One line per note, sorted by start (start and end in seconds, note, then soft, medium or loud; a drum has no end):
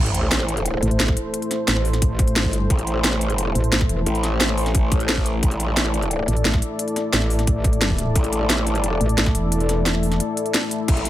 0.00 0.81 A1 medium
0.00 11.09 A3 medium
0.00 11.09 E4 medium
0.00 11.09 A4 medium
0.00 5.41 C5 medium
0.00 sub drop medium
0.06 closed hi-hat soft
0.14 closed hi-hat medium
0.31 snare loud
0.31 closed hi-hat medium
0.40 snare soft
0.49 closed hi-hat medium
0.57 closed hi-hat soft
0.66 closed hi-hat loud
0.83 0.98 A1 loud
0.83 closed hi-hat medium
0.91 closed hi-hat soft
1.00 1.15 A1 loud
1.00 snare loud
1.00 closed hi-hat medium
1.08 kick loud
1.08 snare medium
1.17 closed hi-hat medium
1.34 closed hi-hat medium
1.42 closed hi-hat soft
1.51 snare soft
1.51 closed hi-hat medium
1.68 2.39 A1 medium
1.68 snare loud
1.68 closed hi-hat medium
1.76 snare soft
1.85 open hi-hat medium
1.93 snare soft
1.93 closed hi-hat soft
2.02 kick loud
2.02 closed hi-hat loud
2.19 kick loud
2.19 closed hi-hat medium
2.28 closed hi-hat soft
2.36 2.69 G#1 medium
2.36 snare loud
2.36 closed hi-hat medium
2.45 kick medium
2.53 closed hi-hat medium
2.70 3.54 A1 loud
2.70 kick loud
2.70 closed hi-hat medium
2.79 closed hi-hat soft
2.87 closed hi-hat medium
3.04 snare loud
3.04 closed hi-hat medium
3.13 snare soft
3.21 closed hi-hat medium
3.30 closed hi-hat soft
3.38 closed hi-hat medium
3.55 3.71 A1 loud
3.55 closed hi-hat medium
3.64 closed hi-hat soft
3.72 3.88 A1 loud
3.72 snare loud
3.72 closed hi-hat medium
3.81 kick loud
3.81 snare soft
3.89 4.05 E1 loud
3.89 closed hi-hat medium
4.06 5.41 A1 loud
4.06 closed hi-hat medium
4.15 closed hi-hat soft
4.23 snare soft
4.23 closed hi-hat medium
4.40 snare loud
4.40 closed hi-hat medium
4.49 snare soft
4.58 open hi-hat medium
4.66 snare soft
4.66 closed hi-hat soft
4.75 kick loud
4.75 closed hi-hat medium
4.92 kick loud
4.92 closed hi-hat medium
5.00 closed hi-hat soft
5.09 snare loud
5.09 closed hi-hat medium
5.17 kick medium
5.26 closed hi-hat medium
5.43 6.27 A1 loud
5.43 10.86 D5 medium
5.43 kick loud
5.43 closed hi-hat medium
5.51 closed hi-hat soft
5.60 closed hi-hat medium
5.77 snare loud
5.77 closed hi-hat medium
5.85 snare soft
5.94 closed hi-hat medium
6.02 closed hi-hat soft
6.11 closed hi-hat medium
6.28 6.44 A1 loud
6.28 closed hi-hat medium
6.37 closed hi-hat soft
6.45 6.61 A1 loud
6.45 snare loud
6.45 closed hi-hat medium
6.54 kick loud
6.54 snare soft
6.62 closed hi-hat medium
6.79 closed hi-hat medium
6.88 closed hi-hat soft
6.96 snare soft
6.96 closed hi-hat medium
7.13 8.14 A1 loud
7.13 snare loud
7.13 closed hi-hat medium
7.22 snare soft
7.30 open hi-hat medium
7.39 snare soft
7.39 closed hi-hat soft
7.47 kick loud
7.47 closed hi-hat loud
7.64 kick loud
7.64 closed hi-hat medium
7.73 closed hi-hat soft
7.81 snare loud
7.81 closed hi-hat medium
7.90 kick medium
7.98 closed hi-hat medium
8.15 8.99 A1 medium
8.15 kick loud
8.15 closed hi-hat medium
8.24 closed hi-hat soft
8.33 closed hi-hat medium
8.50 snare loud
8.50 closed hi-hat loud
8.58 snare soft
8.67 closed hi-hat medium
8.75 closed hi-hat soft
8.84 closed hi-hat loud
9.01 9.16 A1 loud
9.01 closed hi-hat medium
9.09 closed hi-hat soft
9.18 9.34 A1 loud
9.18 snare loud
9.18 closed hi-hat medium
9.26 kick loud
9.26 snare soft
9.35 10.20 E1 loud
9.35 closed hi-hat medium
9.52 closed hi-hat loud
9.60 closed hi-hat soft
9.69 snare soft
9.69 closed hi-hat medium
9.86 snare loud
9.86 closed hi-hat loud
9.95 snare soft
10.03 open hi-hat medium
10.12 snare soft
10.12 closed hi-hat soft
10.20 closed hi-hat loud
10.37 closed hi-hat medium
10.46 closed hi-hat soft
10.54 snare loud
10.54 closed hi-hat loud
10.71 closed hi-hat medium
10.88 11.09 A1 loud
10.88 10.95 A3 medium
10.88 11.09 C5 loud
10.88 kick loud
10.88 closed hi-hat loud
10.88 crash medium
10.97 closed hi-hat soft
11.05 closed hi-hat medium